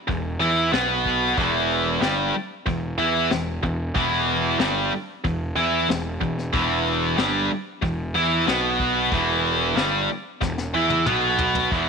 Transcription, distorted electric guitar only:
0.08 0.34 E2 medium
0.40 0.72 E3 medium
0.40 0.72 E4 loud
0.72 1.36 B2 medium
0.72 1.36 B3 medium
1.37 2.01 E2 medium
1.37 2.01 E3 loud
2.01 2.33 G2 medium
2.01 2.33 G3 loud
2.66 2.92 E2 medium
2.98 3.30 E3 medium
2.98 3.30 E4 medium
3.31 3.57 E2 medium
3.63 3.89 E2 medium
3.95 4.59 E2 medium
3.95 4.59 E3 loud
4.59 4.91 G2 medium
4.59 4.91 G3 loud
5.24 5.50 E2 medium
5.56 5.88 E3 medium
5.56 5.88 E4 loud
5.89 6.15 E2 medium
6.21 6.47 E2 medium
6.53 7.17 E2 loud
6.53 7.17 E3 medium
7.18 7.49 G2 loud
7.18 7.50 G3 loud
7.82 8.08 E2 medium
8.15 8.46 E3 loud
8.15 8.46 E4 loud
8.46 9.11 B2 loud
8.46 9.11 B3 loud
9.11 9.76 E2 medium
9.11 9.76 E3 loud
9.76 10.08 G2 medium
9.76 10.08 G3 loud
10.41 10.67 E2 medium
10.74 11.06 E3 loud
10.74 11.06 E4 loud
11.06 11.71 B2 medium
11.06 11.71 B3 medium
11.71 11.89 E2 medium
11.71 11.89 E3 medium

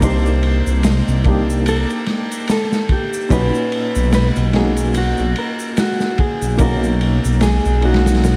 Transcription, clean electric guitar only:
0.04 1.68 C5 medium
1.69 2.51 A#4 medium
2.51 2.92 A4 medium
2.92 3.33 G4 medium
3.32 4.13 B4 medium
4.15 4.26 B4 medium
4.56 4.93 G#4 medium
4.98 5.35 F#4 medium
5.39 5.80 A#4 medium
5.80 6.21 F#4 medium
6.20 6.61 G#4 medium
6.61 7.39 A#4 medium
7.43 7.85 G#4 medium
7.85 8.37 F#4 medium

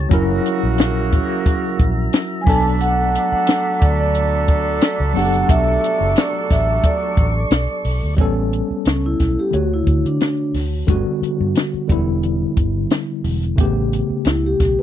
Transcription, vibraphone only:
2.41 2.47 G#5 medium
2.49 2.63 A5 loud
2.81 3.31 F#5 loud
3.33 3.83 F#5 medium
3.82 3.99 D5 medium
4.00 4.96 D5 medium
5.17 5.51 F#5 medium
5.50 6.13 E5 loud
6.18 6.52 D5 medium
6.52 6.86 E5 medium
6.86 7.82 D5 medium
8.88 9.06 C#4 medium
9.06 9.40 E4 medium
9.39 9.55 G4 medium
9.55 9.73 F#4 medium
9.74 10.04 E4 medium
10.06 10.52 D4 medium
14.28 14.45 E4 medium
14.46 14.80 G4 medium
14.79 14.83 B4 medium

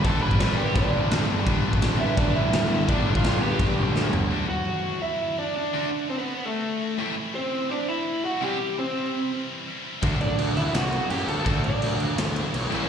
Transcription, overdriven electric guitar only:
0.05 0.21 A4 medium
0.05 0.21 A5 loud
0.22 0.55 B4 medium
0.22 0.59 B5 loud
0.57 0.73 G4 medium
0.57 0.76 G5 medium
0.75 1.25 D4 medium
0.75 1.25 D5 medium
2.00 2.17 E4 medium
2.00 2.18 E5 medium
2.17 2.34 D4 medium
2.17 2.34 D5 medium
2.35 2.85 E4 medium
2.35 2.90 E5 loud
2.89 3.13 D4 medium
2.89 3.13 D5 medium
3.16 3.40 F4 medium
3.16 3.41 F5 medium
3.41 4.09 G4 medium
3.41 4.09 G5 medium
4.48 4.98 F#4 medium
4.48 5.01 F#5 loud
5.02 5.36 E4 medium
5.02 5.35 E5 loud
5.38 5.55 D4 medium
5.38 5.55 D5 medium
5.56 6.06 D4 medium
5.56 6.09 D5 medium
6.10 6.18 C4 medium
6.10 6.17 C5 medium
6.18 6.44 B3 medium
6.18 6.46 B4 medium
6.45 6.96 A3 medium
6.45 6.95 A4 medium
7.35 7.68 C4 medium
7.35 7.72 C5 medium
7.71 7.87 D4 medium
7.71 7.88 D5 medium
7.88 8.21 E4 medium
7.88 8.25 E5 loud
8.24 8.41 F#4 medium
8.24 8.44 F#5 loud
8.43 8.76 G4 medium
8.43 8.79 G5 loud
8.78 9.28 C4 medium
8.78 9.28 C5 medium
10.21 10.54 D4 medium
10.21 10.54 D5 loud
10.57 10.74 E4 medium
10.57 10.75 E5 medium
10.74 11.08 F#4 medium
10.74 11.10 F#5 medium
11.10 11.27 G4 medium
11.10 11.28 G5 medium
11.28 11.62 A4 medium
11.28 11.65 A5 loud
11.63 12.14 D4 medium
11.63 12.14 D5 medium

